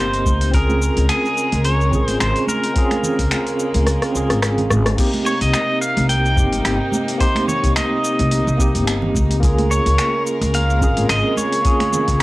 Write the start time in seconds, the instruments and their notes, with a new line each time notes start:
Already playing: upright bass G1, string section C3 A#3 D#4, tine electric piano A#3 C4 D#4 G4
0.00 pedal steel guitar C5
0.14 open hi-hat, cabasa
0.26 upright bass C#2, kick, high conga, cabasa
0.41 open hi-hat, cabasa
0.51 string section C#3 G#3 A#4, tine electric piano C4 C#4 F4, pedal steel guitar A#4, kick, open hi-hat, cabasa
0.56 tine electric piano G#4
0.69 high conga, cabasa
0.82 cabasa
0.97 upright bass C#2, open hi-hat, cabasa
1.09 pedal steel guitar G#4, finger snap, open hi-hat, high conga, cabasa
1.25 cabasa
1.38 cabasa
1.52 upright bass C#2, open hi-hat, high conga, cabasa
1.65 pedal steel guitar C#5, open hi-hat, cabasa
1.81 cabasa
1.90 upright bass G#1, tine electric piano C4 C#4 F4, kick, low conga, cabasa
1.95 tine electric piano G#4
2.06 upright bass G#1, pedal steel guitar C5, open hi-hat, high conga, cabasa
2.20 upright bass G#1, pedal steel guitar C5, finger snap, open hi-hat, cabasa
2.36 open hi-hat, cabasa
2.47 pedal steel guitar A#4, high conga, cabasa
2.63 open hi-hat, cabasa
2.74 string section A#3, tine electric piano C4 C#4 F4, kick, open hi-hat, cabasa
2.78 tine electric piano G#4
2.91 finger snap, open hi-hat, high conga, cabasa
3.03 low conga, cabasa
3.19 upright bass C#2, kick, open hi-hat, cabasa
3.31 finger snap, open hi-hat, high conga, cabasa
3.47 open hi-hat, cabasa
3.59 cabasa
3.74 upright bass C#2, open hi-hat, high conga, cabasa
3.87 cross-stick, open hi-hat, cabasa
4.02 cross-stick, open hi-hat, cabasa
4.12 upright bass C#2, tine electric piano C4 C#4 F4, cabasa
4.17 tine electric piano G#4
4.30 upright bass G#1, cross-stick, open hi-hat, high conga, cabasa
4.42 finger snap, cross-stick, open hi-hat, cabasa
4.58 open hi-hat, low conga, cabasa
4.70 upright bass G#1, cross-stick, high conga, cabasa
4.86 cross-stick, open hi-hat, cabasa
4.96 string section C3 A#3 D#4, tine electric piano A#3 C4 D#4, kick, open hi-hat, crash, cabasa
5.00 tine electric piano G4
5.14 open hi-hat, high conga
5.26 pedal steel guitar C#5, cabasa
5.41 upright bass C2, pedal steel guitar D#5, open hi-hat, cabasa
5.54 finger snap, open hi-hat, high conga, cabasa
5.81 pedal steel guitar F5, cabasa
5.97 upright bass C2, open hi-hat, high conga, cabasa
6.09 pedal steel guitar G5, open hi-hat, cabasa
6.26 cabasa
6.35 upright bass G1, tine electric piano A#3 C4 D#4, kick, cabasa
6.39 tine electric piano G4
6.53 upright bass G1, open hi-hat, high conga, cabasa
6.65 upright bass G1, finger snap, open hi-hat, cabasa
6.92 high conga, cabasa
7.08 open hi-hat, cabasa
7.18 tine electric piano A#3 C4 D#4, pedal steel guitar C5, kick, open hi-hat, cabasa
7.22 tine electric piano G4
7.35 finger snap, open hi-hat, high conga
7.48 pedal steel guitar C#5, low conga, cabasa
7.64 upright bass C2, kick, open hi-hat, cabasa
7.76 pedal steel guitar D#5, finger snap, open hi-hat, high conga, cabasa
8.04 cabasa
8.19 upright bass C2, open hi-hat, high conga, cabasa
8.31 open hi-hat, cabasa
8.47 upright bass C2, cabasa
8.57 tine electric piano A#3 C4 D#4, kick, cabasa
8.61 tine electric piano G4
8.75 upright bass G1, open hi-hat, high conga, cabasa
8.87 finger snap, open hi-hat, cabasa
9.02 low conga
9.14 upright bass C#2, kick, high conga, cabasa
9.31 open hi-hat, cabasa
9.40 string section C#3 G#3 A#4, tine electric piano A#3 C#4 F4, kick, open hi-hat, cabasa
9.45 tine electric piano G#4
9.58 open hi-hat, high conga
9.71 pedal steel guitar C#5, cabasa
9.86 upright bass C#2, open hi-hat, cabasa
9.98 finger snap, open hi-hat, high conga, cabasa
10.27 cabasa
10.41 upright bass C#2, open hi-hat, high conga, cabasa
10.54 pedal steel guitar F5, open hi-hat, cabasa
10.70 cabasa
10.79 upright bass G#1, tine electric piano C4 C#4 F4, kick, cabasa
10.84 tine electric piano G#4
10.97 upright bass G#1, open hi-hat, high conga, cabasa
11.09 upright bass G#1, pedal steel guitar D#5, finger snap, open hi-hat, cabasa
11.37 pedal steel guitar C#5, high conga, cabasa
11.52 open hi-hat, cabasa
11.62 tine electric piano A#3 C#4 F4, string section A#3, kick, open hi-hat, cabasa
11.67 tine electric piano G#4
11.80 finger snap, open hi-hat, high conga
11.92 low conga, cabasa
12.08 upright bass C#2, kick, open hi-hat, cabasa